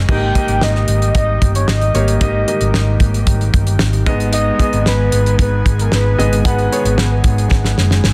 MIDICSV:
0, 0, Header, 1, 6, 480
1, 0, Start_track
1, 0, Tempo, 530598
1, 75, Time_signature, 4, 2, 24, 8
1, 7357, End_track
2, 0, Start_track
2, 0, Title_t, "Soft synth lead"
2, 0, Program_c, 0, 80
2, 99, Note_on_c, 0, 79, 96
2, 569, Note_on_c, 0, 75, 81
2, 583, Note_off_c, 0, 79, 0
2, 1033, Note_off_c, 0, 75, 0
2, 1039, Note_on_c, 0, 75, 94
2, 1372, Note_off_c, 0, 75, 0
2, 1406, Note_on_c, 0, 73, 74
2, 1513, Note_on_c, 0, 75, 89
2, 1526, Note_off_c, 0, 73, 0
2, 1994, Note_off_c, 0, 75, 0
2, 2008, Note_on_c, 0, 75, 71
2, 2686, Note_off_c, 0, 75, 0
2, 3920, Note_on_c, 0, 75, 103
2, 4364, Note_off_c, 0, 75, 0
2, 4411, Note_on_c, 0, 71, 89
2, 4850, Note_off_c, 0, 71, 0
2, 4897, Note_on_c, 0, 71, 98
2, 5255, Note_on_c, 0, 70, 80
2, 5269, Note_off_c, 0, 71, 0
2, 5365, Note_off_c, 0, 70, 0
2, 5381, Note_on_c, 0, 71, 93
2, 5815, Note_off_c, 0, 71, 0
2, 5854, Note_on_c, 0, 71, 77
2, 6528, Note_off_c, 0, 71, 0
2, 7357, End_track
3, 0, Start_track
3, 0, Title_t, "Upright piano"
3, 0, Program_c, 1, 0
3, 0, Control_c, 1, 64, 127
3, 0, Note_on_c, 1, 61, 77
3, 0, Note_on_c, 1, 68, 70
3, 0, Note_on_c, 1, 75, 78
3, 78, Note_on_c, 1, 67, 52
3, 79, Note_on_c, 1, 44, 48
3, 80, Note_on_c, 1, 58, 57
3, 83, Note_off_c, 1, 75, 0
3, 83, Note_on_c, 1, 75, 60
3, 86, Control_c, 1, 64, 0
3, 91, Note_off_c, 1, 61, 0
3, 92, Note_off_c, 1, 68, 0
3, 250, Control_c, 1, 64, 127
3, 270, Note_off_c, 1, 67, 0
3, 271, Note_off_c, 1, 58, 0
3, 272, Note_off_c, 1, 75, 0
3, 316, Note_on_c, 1, 67, 46
3, 317, Note_on_c, 1, 75, 57
3, 318, Note_on_c, 1, 58, 59
3, 761, Note_off_c, 1, 44, 0
3, 1090, Note_off_c, 1, 67, 0
3, 1090, Note_off_c, 1, 75, 0
3, 1091, Note_off_c, 1, 58, 0
3, 1760, Note_on_c, 1, 73, 66
3, 1764, Note_on_c, 1, 58, 63
3, 1764, Note_on_c, 1, 67, 51
3, 1951, Note_off_c, 1, 73, 0
3, 1953, Note_off_c, 1, 58, 0
3, 1953, Note_off_c, 1, 67, 0
3, 2005, Note_on_c, 1, 67, 58
3, 2006, Note_on_c, 1, 44, 47
3, 2008, Note_on_c, 1, 75, 69
3, 2010, Note_on_c, 1, 58, 57
3, 2194, Note_off_c, 1, 67, 0
3, 2195, Note_off_c, 1, 75, 0
3, 2196, Note_off_c, 1, 58, 0
3, 2241, Note_on_c, 1, 58, 49
3, 2242, Note_on_c, 1, 67, 51
3, 2244, Note_on_c, 1, 75, 64
3, 2685, Note_off_c, 1, 44, 0
3, 3012, Note_off_c, 1, 58, 0
3, 3013, Note_off_c, 1, 67, 0
3, 3014, Note_off_c, 1, 75, 0
3, 3678, Note_on_c, 1, 68, 68
3, 3679, Note_on_c, 1, 75, 83
3, 3681, Note_on_c, 1, 44, 67
3, 3681, Note_on_c, 1, 59, 75
3, 3686, Control_c, 1, 64, 0
3, 3839, Control_c, 1, 64, 127
3, 4063, Note_off_c, 1, 68, 0
3, 4064, Note_off_c, 1, 75, 0
3, 4065, Note_off_c, 1, 59, 0
3, 4155, Note_on_c, 1, 68, 51
3, 4159, Note_on_c, 1, 59, 54
3, 4159, Note_on_c, 1, 75, 62
3, 4362, Note_off_c, 1, 44, 0
3, 4929, Note_off_c, 1, 68, 0
3, 4931, Note_off_c, 1, 59, 0
3, 4931, Note_off_c, 1, 75, 0
3, 5594, Note_on_c, 1, 59, 62
3, 5594, Note_on_c, 1, 68, 61
3, 5595, Note_on_c, 1, 75, 72
3, 5597, Note_on_c, 1, 44, 52
3, 5788, Note_off_c, 1, 59, 0
3, 5788, Note_off_c, 1, 68, 0
3, 5788, Note_off_c, 1, 75, 0
3, 5835, Note_on_c, 1, 78, 65
3, 5838, Note_on_c, 1, 68, 56
3, 5840, Note_on_c, 1, 59, 61
3, 6028, Note_off_c, 1, 78, 0
3, 6030, Note_off_c, 1, 68, 0
3, 6031, Note_off_c, 1, 59, 0
3, 6080, Note_on_c, 1, 68, 50
3, 6082, Note_on_c, 1, 59, 53
3, 6084, Note_on_c, 1, 73, 68
3, 6279, Note_off_c, 1, 44, 0
3, 6851, Note_off_c, 1, 68, 0
3, 6852, Note_off_c, 1, 59, 0
3, 6853, Note_off_c, 1, 73, 0
3, 7357, End_track
4, 0, Start_track
4, 0, Title_t, "Analog synth pad"
4, 0, Program_c, 2, 89
4, 69, Note_on_c, 2, 58, 59
4, 71, Note_on_c, 2, 55, 60
4, 72, Note_on_c, 2, 51, 73
4, 77, Note_on_c, 2, 67, 80
4, 3636, Note_off_c, 2, 58, 0
4, 3637, Note_off_c, 2, 55, 0
4, 3640, Note_off_c, 2, 67, 0
4, 3676, Note_on_c, 2, 59, 69
4, 3677, Note_on_c, 2, 56, 70
4, 3677, Note_on_c, 2, 68, 82
4, 7357, Note_off_c, 2, 51, 0
4, 7357, Note_off_c, 2, 56, 0
4, 7357, Note_off_c, 2, 59, 0
4, 7357, Note_off_c, 2, 68, 0
4, 7357, End_track
5, 0, Start_track
5, 0, Title_t, "Picked electric bass"
5, 0, Program_c, 3, 34
5, 79, Note_on_c, 3, 32, 91
5, 274, Note_off_c, 3, 32, 0
5, 435, Note_on_c, 3, 32, 84
5, 534, Note_off_c, 3, 32, 0
5, 559, Note_on_c, 3, 32, 74
5, 754, Note_off_c, 3, 32, 0
5, 797, Note_on_c, 3, 32, 75
5, 993, Note_off_c, 3, 32, 0
5, 1040, Note_on_c, 3, 32, 86
5, 1235, Note_off_c, 3, 32, 0
5, 1283, Note_on_c, 3, 31, 78
5, 1477, Note_off_c, 3, 31, 0
5, 1513, Note_on_c, 3, 32, 88
5, 1711, Note_off_c, 3, 32, 0
5, 1758, Note_on_c, 3, 32, 78
5, 1954, Note_off_c, 3, 32, 0
5, 2002, Note_on_c, 3, 32, 87
5, 2196, Note_off_c, 3, 32, 0
5, 2361, Note_on_c, 3, 32, 81
5, 2457, Note_off_c, 3, 32, 0
5, 2485, Note_on_c, 3, 32, 78
5, 2678, Note_off_c, 3, 32, 0
5, 2716, Note_on_c, 3, 32, 93
5, 2913, Note_off_c, 3, 32, 0
5, 2954, Note_on_c, 3, 32, 94
5, 3151, Note_off_c, 3, 32, 0
5, 3204, Note_on_c, 3, 31, 79
5, 3397, Note_off_c, 3, 31, 0
5, 3445, Note_on_c, 3, 32, 75
5, 3637, Note_off_c, 3, 32, 0
5, 4281, Note_on_c, 3, 32, 77
5, 4377, Note_off_c, 3, 32, 0
5, 4403, Note_on_c, 3, 32, 73
5, 4596, Note_off_c, 3, 32, 0
5, 4639, Note_on_c, 3, 32, 87
5, 4834, Note_off_c, 3, 32, 0
5, 4879, Note_on_c, 3, 32, 83
5, 5074, Note_off_c, 3, 32, 0
5, 5117, Note_on_c, 3, 32, 76
5, 5313, Note_off_c, 3, 32, 0
5, 5355, Note_on_c, 3, 32, 89
5, 5552, Note_off_c, 3, 32, 0
5, 5597, Note_on_c, 3, 32, 75
5, 5793, Note_off_c, 3, 32, 0
5, 6194, Note_on_c, 3, 32, 87
5, 6293, Note_off_c, 3, 32, 0
5, 6313, Note_on_c, 3, 32, 83
5, 6510, Note_off_c, 3, 32, 0
5, 6550, Note_on_c, 3, 32, 97
5, 6748, Note_off_c, 3, 32, 0
5, 6794, Note_on_c, 3, 32, 93
5, 6991, Note_off_c, 3, 32, 0
5, 7035, Note_on_c, 3, 30, 88
5, 7231, Note_off_c, 3, 30, 0
5, 7274, Note_on_c, 3, 32, 70
5, 7357, Note_off_c, 3, 32, 0
5, 7357, End_track
6, 0, Start_track
6, 0, Title_t, "Drums"
6, 77, Note_on_c, 9, 49, 71
6, 79, Note_on_c, 9, 36, 92
6, 167, Note_off_c, 9, 49, 0
6, 169, Note_off_c, 9, 36, 0
6, 320, Note_on_c, 9, 36, 78
6, 320, Note_on_c, 9, 42, 57
6, 410, Note_off_c, 9, 36, 0
6, 410, Note_off_c, 9, 42, 0
6, 436, Note_on_c, 9, 42, 41
6, 526, Note_off_c, 9, 42, 0
6, 556, Note_on_c, 9, 38, 88
6, 646, Note_off_c, 9, 38, 0
6, 679, Note_on_c, 9, 38, 25
6, 770, Note_off_c, 9, 38, 0
6, 794, Note_on_c, 9, 42, 58
6, 885, Note_off_c, 9, 42, 0
6, 922, Note_on_c, 9, 42, 37
6, 1013, Note_off_c, 9, 42, 0
6, 1038, Note_on_c, 9, 42, 71
6, 1040, Note_on_c, 9, 36, 75
6, 1128, Note_off_c, 9, 42, 0
6, 1130, Note_off_c, 9, 36, 0
6, 1282, Note_on_c, 9, 36, 72
6, 1282, Note_on_c, 9, 42, 56
6, 1372, Note_off_c, 9, 42, 0
6, 1373, Note_off_c, 9, 36, 0
6, 1403, Note_on_c, 9, 42, 51
6, 1494, Note_off_c, 9, 42, 0
6, 1518, Note_on_c, 9, 38, 100
6, 1609, Note_off_c, 9, 38, 0
6, 1641, Note_on_c, 9, 42, 32
6, 1732, Note_off_c, 9, 42, 0
6, 1761, Note_on_c, 9, 42, 49
6, 1851, Note_off_c, 9, 42, 0
6, 1880, Note_on_c, 9, 42, 44
6, 1971, Note_off_c, 9, 42, 0
6, 1998, Note_on_c, 9, 42, 87
6, 2000, Note_on_c, 9, 36, 93
6, 2089, Note_off_c, 9, 42, 0
6, 2090, Note_off_c, 9, 36, 0
6, 2242, Note_on_c, 9, 42, 59
6, 2333, Note_off_c, 9, 42, 0
6, 2358, Note_on_c, 9, 42, 37
6, 2448, Note_off_c, 9, 42, 0
6, 2479, Note_on_c, 9, 38, 83
6, 2569, Note_off_c, 9, 38, 0
6, 2714, Note_on_c, 9, 42, 57
6, 2715, Note_on_c, 9, 36, 70
6, 2804, Note_off_c, 9, 42, 0
6, 2805, Note_off_c, 9, 36, 0
6, 2844, Note_on_c, 9, 42, 40
6, 2934, Note_off_c, 9, 42, 0
6, 2956, Note_on_c, 9, 42, 81
6, 2957, Note_on_c, 9, 36, 72
6, 3047, Note_off_c, 9, 42, 0
6, 3048, Note_off_c, 9, 36, 0
6, 3085, Note_on_c, 9, 42, 31
6, 3175, Note_off_c, 9, 42, 0
6, 3200, Note_on_c, 9, 36, 80
6, 3201, Note_on_c, 9, 42, 57
6, 3290, Note_off_c, 9, 36, 0
6, 3291, Note_off_c, 9, 42, 0
6, 3317, Note_on_c, 9, 42, 45
6, 3408, Note_off_c, 9, 42, 0
6, 3430, Note_on_c, 9, 38, 100
6, 3521, Note_off_c, 9, 38, 0
6, 3557, Note_on_c, 9, 42, 33
6, 3647, Note_off_c, 9, 42, 0
6, 3677, Note_on_c, 9, 36, 86
6, 3679, Note_on_c, 9, 42, 43
6, 3767, Note_off_c, 9, 36, 0
6, 3770, Note_off_c, 9, 42, 0
6, 3800, Note_on_c, 9, 42, 41
6, 3891, Note_off_c, 9, 42, 0
6, 3914, Note_on_c, 9, 42, 91
6, 4004, Note_off_c, 9, 42, 0
6, 4157, Note_on_c, 9, 36, 78
6, 4161, Note_on_c, 9, 42, 60
6, 4247, Note_off_c, 9, 36, 0
6, 4251, Note_off_c, 9, 42, 0
6, 4278, Note_on_c, 9, 42, 42
6, 4368, Note_off_c, 9, 42, 0
6, 4396, Note_on_c, 9, 38, 89
6, 4487, Note_off_c, 9, 38, 0
6, 4634, Note_on_c, 9, 42, 65
6, 4724, Note_off_c, 9, 42, 0
6, 4761, Note_on_c, 9, 42, 37
6, 4852, Note_off_c, 9, 42, 0
6, 4875, Note_on_c, 9, 36, 84
6, 4876, Note_on_c, 9, 42, 70
6, 4966, Note_off_c, 9, 36, 0
6, 4967, Note_off_c, 9, 42, 0
6, 5118, Note_on_c, 9, 36, 76
6, 5122, Note_on_c, 9, 42, 57
6, 5208, Note_off_c, 9, 36, 0
6, 5212, Note_off_c, 9, 42, 0
6, 5242, Note_on_c, 9, 42, 48
6, 5332, Note_off_c, 9, 42, 0
6, 5353, Note_on_c, 9, 38, 89
6, 5444, Note_off_c, 9, 38, 0
6, 5605, Note_on_c, 9, 42, 51
6, 5695, Note_off_c, 9, 42, 0
6, 5724, Note_on_c, 9, 42, 44
6, 5814, Note_off_c, 9, 42, 0
6, 5835, Note_on_c, 9, 42, 85
6, 5836, Note_on_c, 9, 36, 99
6, 5926, Note_off_c, 9, 36, 0
6, 5926, Note_off_c, 9, 42, 0
6, 5957, Note_on_c, 9, 42, 31
6, 6047, Note_off_c, 9, 42, 0
6, 6084, Note_on_c, 9, 42, 55
6, 6174, Note_off_c, 9, 42, 0
6, 6201, Note_on_c, 9, 42, 44
6, 6291, Note_off_c, 9, 42, 0
6, 6314, Note_on_c, 9, 38, 101
6, 6404, Note_off_c, 9, 38, 0
6, 6549, Note_on_c, 9, 42, 57
6, 6552, Note_on_c, 9, 36, 72
6, 6639, Note_off_c, 9, 42, 0
6, 6642, Note_off_c, 9, 36, 0
6, 6679, Note_on_c, 9, 42, 36
6, 6770, Note_off_c, 9, 42, 0
6, 6794, Note_on_c, 9, 36, 81
6, 6796, Note_on_c, 9, 38, 49
6, 6885, Note_off_c, 9, 36, 0
6, 6886, Note_off_c, 9, 38, 0
6, 6916, Note_on_c, 9, 38, 44
6, 7006, Note_off_c, 9, 38, 0
6, 7036, Note_on_c, 9, 38, 54
6, 7126, Note_off_c, 9, 38, 0
6, 7155, Note_on_c, 9, 38, 53
6, 7245, Note_off_c, 9, 38, 0
6, 7271, Note_on_c, 9, 38, 73
6, 7357, Note_off_c, 9, 38, 0
6, 7357, End_track
0, 0, End_of_file